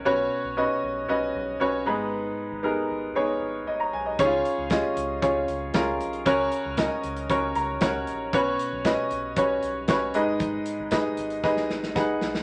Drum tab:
HH |----------------|----------------|x-x-x-x-x-x-x-xx|x-x-x-xxx-x-x-x-|
SD |----------------|----------------|----o-------o---|----o-------o---|
BD |----------------|----------------|o---o---o---o---|o---o---o---o---|

HH |x-x-x-x-x-x-x-x-|x-x-x-xx--------|
SD |----o-------o---|----o---ooooo-oo|
BD |o---o---o---o---|o---o---o---o---|